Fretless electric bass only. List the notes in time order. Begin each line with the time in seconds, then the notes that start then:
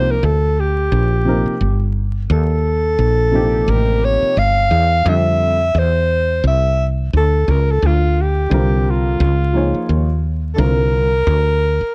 Already playing: C2
0.23 D2
0.92 A#1
1.46 muted fretless electric bass stroke
1.61 G1
2.30 D#2
2.99 A#1
3.68 A1
4.22 muted fretless electric bass stroke
4.37 G1
4.71 E2
5.06 F2
5.75 E2
6.44 C2
7.13 D2
7.48 C#2
7.82 D2
8.51 C2
9.20 C#2
9.74 muted fretless electric bass stroke
9.89 D#2
10.58 C2
11.27 D2
11.81 muted fretless electric bass stroke